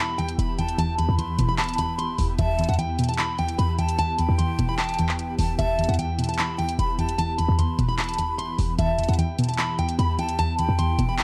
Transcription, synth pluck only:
0.00 0.17 E2 medium
0.00 0.78 B2 medium
0.19 0.57 E2 medium
0.58 0.77 E2 medium
0.78 0.98 E2 medium
0.99 1.17 E2 medium
1.18 1.77 E2 medium
1.39 2.39 B2 medium
1.78 2.17 E2 medium
2.19 2.37 E2 medium
2.39 2.57 E2 loud
2.59 2.77 E2 medium
2.78 3.37 E2 medium
2.99 3.99 B2 medium
3.39 3.77 E2 medium
3.78 3.98 E2 medium
3.99 4.18 E2 medium
4.19 4.38 E2 medium
4.39 4.98 E2 medium
4.59 5.59 B2 medium
4.99 5.38 E2 medium
5.39 5.58 E2 medium
5.59 5.77 E2 medium
5.78 5.97 E2 medium
5.98 6.57 E2 medium
6.18 7.18 B2 medium
6.58 6.97 E2 medium
6.98 7.17 E2 medium
7.18 7.38 E2 medium
7.39 7.57 E2 medium
7.58 8.17 E2 medium
7.79 8.79 B2 medium
8.18 8.57 E2 medium
8.58 8.77 E2 medium
8.78 8.97 E2 loud
8.99 9.17 E2 medium
9.18 9.77 E2 medium
9.39 10.39 B2 medium
9.79 10.17 E2 medium
10.18 10.38 E2 medium
10.39 10.58 E2 medium
10.59 10.78 E2 medium
10.79 11.23 E2 medium
10.99 11.23 B2 medium

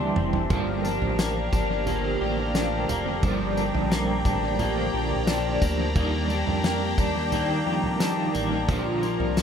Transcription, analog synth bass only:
0.00 0.13 D2 medium
0.17 0.49 F1 medium
0.51 0.99 G1 loud
1.01 1.50 A1 medium
1.53 2.17 G1 loud
2.21 2.86 A1 medium
2.89 3.21 F1 medium
3.23 3.72 G1 loud
3.74 4.23 A#1 medium
4.25 4.90 A1 loud
4.94 5.58 A#1 medium
5.62 5.94 D2 medium
5.96 6.44 D#2 loud
6.47 6.96 F2 medium
6.98 7.63 D#2 loud
7.66 8.31 F2 medium
8.34 8.67 A1 medium
8.69 9.17 A#1 loud
9.20 9.42 C2 medium

